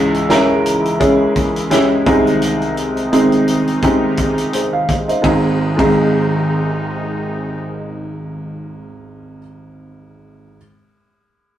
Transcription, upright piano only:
0.00 2.02 C#2 medium
0.00 2.02 G#2 medium
0.00 0.18 G#3 loud
0.00 0.18 C#4 medium
0.00 0.18 E4 medium
0.00 0.18 G#4 loud
0.30 0.89 G#3 medium
0.30 0.89 C#4 medium
0.30 0.89 E4 medium
0.30 0.89 A#4 medium
1.00 1.59 G#3 medium
1.00 1.59 C#4 medium
1.00 1.59 E4 medium
1.00 1.59 G#4 medium
1.70 2.05 G#3 medium
1.70 2.06 C#4 medium
1.70 2.06 E4 medium
1.70 2.06 G4 medium
2.06 4.85 C2 medium
2.06 4.85 C3 medium
2.06 2.94 G#3 medium
2.06 2.94 C4 medium
2.06 2.94 D#4 medium
2.06 2.94 G#4 medium
3.12 3.71 G#3 medium
3.12 3.71 C4 medium
3.12 3.71 D#4 medium
3.12 3.71 G#4 medium
3.83 4.42 G#3 medium
3.83 4.42 C4 medium
3.83 4.42 D#4 medium
3.83 4.42 G4 medium
4.53 4.72 G#4 soft
4.53 4.72 C5 soft
4.73 5.06 F5 soft
5.08 5.42 C5 soft
5.08 5.42 D#5 soft
5.22 5.45 G#1 medium
5.22 5.44 G#3 medium
5.22 5.45 C4 medium
5.22 5.45 D#4 medium
5.22 5.46 G#4 medium
5.77 9.40 G#1 medium
5.77 9.38 G#3 medium
5.77 9.39 C4 medium
5.77 9.40 D#4 medium
5.81 9.42 G#4 medium

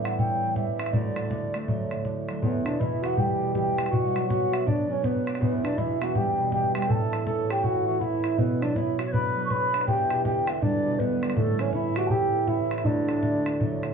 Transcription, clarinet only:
2.42 2.66 B3 medium
2.65 2.81 D4 medium
2.79 3.04 E4 medium
3.02 3.18 F#4 medium
3.16 3.52 G4 medium
3.53 3.88 G4 medium
3.91 4.26 F#4 medium
4.28 4.68 F#4 medium
4.66 4.88 D4 medium
4.89 5.02 C#4 medium
5.04 5.38 B3 medium
5.40 5.65 B3 medium
5.63 5.79 D4 medium
5.77 6.01 E4 medium
6.01 6.17 F#4 medium
6.15 6.52 G4 medium
6.52 6.74 G4 medium
6.75 6.83 G4 medium
6.83 6.89 G4 medium
6.88 7.25 A4 medium
7.26 7.52 A4 medium
7.50 7.65 G4 medium
7.63 7.86 F#4 medium
7.87 8.01 F#4 medium
8.00 8.40 E4 medium
8.38 8.63 B3 medium
8.61 8.77 D4 medium
8.75 8.98 E4 medium
9.07 9.14 C#5 medium
9.12 9.49 B4 loud
9.50 9.89 B4 medium
9.87 10.00 G4 medium
10.00 10.11 G4 medium
10.12 10.23 G4 medium
10.24 10.46 G4 medium
10.62 11.01 D4 medium
10.99 11.38 B3 medium
11.37 11.61 A3 medium
11.59 11.76 C#4 medium
11.75 11.99 E4 medium
11.97 12.10 F#4 medium
12.11 12.50 G4 medium
12.48 12.86 E4 medium
12.84 13.94 D4 medium

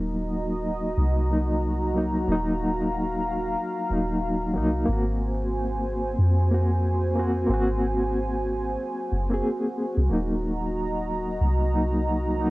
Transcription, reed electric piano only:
0.00 1.25 F#3 medium
0.00 1.27 A#3 medium
0.00 1.29 D#4 medium
1.30 1.92 F#3 medium
1.30 1.92 A#3 medium
1.30 1.93 D#4 medium
1.94 2.23 F#3 medium
1.94 2.25 A#3 medium
1.94 2.26 D#4 medium
2.24 3.86 F#3 medium
2.24 3.88 A#3 medium
2.32 3.90 D#4 loud
3.89 4.52 F#3 medium
3.89 4.53 A#3 medium
3.89 4.54 D#4 medium
4.54 4.84 F#3 medium
4.54 4.84 A#3 medium
4.58 4.86 D#4 loud
4.85 6.47 A#3 medium
4.85 6.49 C4 medium
4.93 6.50 F#4 medium
6.51 7.13 A#3 medium
6.51 7.14 C4 medium
6.51 7.15 F#4 medium
7.16 7.46 A#3 medium
7.16 7.46 C4 medium
7.16 7.47 F#4 loud
7.47 9.08 A#3 medium
7.47 9.10 C4 medium
7.54 9.11 F#4 medium
9.30 9.39 A#3 medium
9.30 9.40 C4 medium
9.30 9.41 G#4 loud
10.06 11.68 F#3 medium
10.06 11.70 A#3 medium
10.13 11.71 D#4 medium
11.72 12.35 F#3 medium
11.72 12.35 A#3 medium
11.72 12.36 D#4 medium
12.37 12.50 F#3 medium
12.37 12.50 A#3 medium
12.37 12.50 D#4 medium

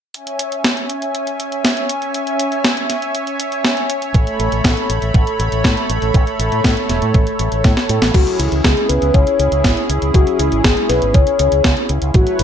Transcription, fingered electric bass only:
4.14 4.23 A1 loud
4.39 4.48 A1 medium
4.52 4.61 A1 medium
4.64 4.73 A1 loud
4.90 4.99 A1 medium
5.02 5.11 A1 medium
5.14 5.23 A1 loud
5.39 5.48 A1 medium
5.52 5.61 A1 medium
5.64 5.73 A2 loud
5.89 5.98 A1 medium
6.02 6.11 A1 medium
6.14 6.23 A1 loud
6.39 6.48 A1 medium
6.52 6.61 A2 medium
6.64 6.73 A2 loud
6.89 6.98 E1 medium
7.02 7.11 A2 medium
7.14 7.23 A1 loud
7.39 7.48 A1 medium
7.52 7.61 A1 medium
7.64 7.73 A2 loud
7.89 7.98 A2 medium
8.02 8.11 A1 medium
8.14 8.23 C#2 loud
8.39 8.48 C#2 medium
8.52 8.61 C#2 medium
8.64 8.73 C#2 loud
8.90 8.99 C#2 medium
9.02 9.11 C#2 medium
9.14 9.23 C#2 loud
9.39 9.48 C#2 medium
9.52 9.61 C#2 medium
9.64 9.73 G#1 medium
9.89 9.99 C#2 medium
10.02 10.11 C#2 medium
10.14 10.23 C#2 loud
10.39 10.48 C#2 medium
10.52 10.61 G#1 medium
10.64 10.73 G#1 loud
10.89 10.98 B1 medium
11.02 11.11 G#1 medium
11.14 11.23 C#2 loud
11.40 11.49 C#2 medium
11.52 11.61 C#2 medium
11.64 11.73 C#2 medium
11.90 11.99 C#2 medium
12.02 12.11 C#2 medium
12.14 12.23 A1 loud
12.39 12.44 A1 medium

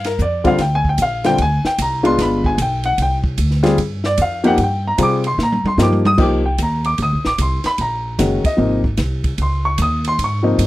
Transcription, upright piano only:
0.06 0.19 A#4 medium
0.22 0.45 D5 medium
0.44 0.57 D3 medium
0.44 0.57 G3 medium
0.44 0.57 C4 medium
0.44 0.58 F4 medium
0.44 0.60 F5 medium
0.61 0.73 G5 medium
0.75 0.86 G#5 loud
0.89 1.00 G5 medium
1.02 1.25 F5 medium
1.24 1.37 D3 medium
1.24 1.37 G3 medium
1.24 1.37 C4 medium
1.24 1.37 F4 medium
1.24 1.39 G5 loud
1.42 1.65 G#5 loud
1.66 1.79 G5 medium
1.82 2.05 A#5 medium
2.03 2.55 G#3 medium
2.03 2.55 B3 medium
2.03 2.55 D4 medium
2.03 2.55 F4 medium
2.03 2.19 C6 loud
2.22 2.45 B5 medium
2.46 2.59 G#5 medium
2.62 2.85 G5 medium
2.86 2.98 F#5 loud
3.02 3.16 G5 medium
3.63 3.76 G3 medium
3.63 3.76 C4 medium
3.63 3.76 F4 medium
3.63 3.76 G#4 medium
4.06 4.18 D5 medium
4.22 4.45 F5 medium
4.44 4.56 F3 medium
4.44 4.56 A#3 medium
4.44 4.57 D#4 medium
4.44 4.57 G4 medium
4.44 4.58 F#5 loud
4.59 4.61 F#5 medium
4.63 4.86 G5 medium
4.88 4.99 A#5 medium
4.98 5.21 G3 medium
4.98 5.21 C4 medium
4.98 5.21 F4 medium
4.98 5.21 G#4 medium
5.03 5.25 D6 loud
5.27 5.39 C6 loud
5.43 5.66 A#5 medium
5.67 5.79 C6 medium
5.78 6.01 F3 medium
5.78 6.02 A#3 medium
5.78 6.02 D#4 medium
5.78 6.02 G4 medium
5.83 6.05 D6 medium
6.06 6.19 D#6 loud
6.18 6.41 F3 medium
6.18 6.41 A#3 medium
6.18 6.41 D#4 medium
6.18 6.42 G4 medium
6.22 6.45 D6 medium
6.46 6.58 G5 medium
6.63 6.85 A#5 medium
6.86 6.98 D6 medium
7.02 7.25 D#6 loud
7.27 7.39 D6 medium
7.42 7.65 C6 medium
7.66 7.79 B5 loud
7.81 8.41 A#5 medium
8.19 8.42 D#3 medium
8.19 8.42 G#3 medium
8.19 8.42 C#4 medium
8.19 8.42 F#4 medium
8.46 8.82 D#5 medium
8.57 8.81 C3 medium
8.57 8.81 F3 medium
8.57 8.81 A#3 medium
8.57 8.81 D#4 medium
9.42 9.65 C6 medium
9.65 9.78 C#6 medium
9.82 10.05 D#6 loud
10.08 10.19 C6 loud
10.24 10.67 C#6 medium
10.43 10.67 C3 medium
10.43 10.67 F3 medium
10.43 10.67 A#3 medium
10.43 10.67 D#4 medium

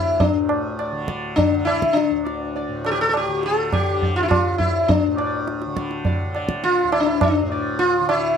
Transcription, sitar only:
0.00 0.21 E4 medium
0.20 1.05 D4 medium
0.79 1.07 D5 soft
1.08 1.36 D5 soft
1.36 1.67 D4 medium
1.65 1.96 E4 loud
1.93 2.50 D4 medium
2.25 2.53 D5 soft
2.56 2.83 D5 soft
2.86 2.91 A4 loud
2.91 2.98 G4 medium
3.01 3.08 A4 loud
3.09 3.15 A4 medium
3.17 3.45 G4 medium
3.46 3.73 A4 medium
3.73 4.16 G4 medium
4.03 4.30 D5 soft
4.16 4.22 F4 medium
4.23 4.28 E4 medium
4.28 4.58 F4 medium
4.58 4.89 E4 medium
4.88 5.72 D4 medium
5.18 5.45 D5 soft
5.76 6.03 D5 soft
6.06 6.33 D5 soft
6.36 6.62 D5 soft
6.64 6.92 F4 loud
6.92 6.99 E4 medium
7.00 7.06 D4 medium
7.06 7.22 E4 medium
7.23 7.49 D4 medium
7.52 7.78 D5 soft
7.79 8.09 F4 loud
8.09 8.37 E4 medium

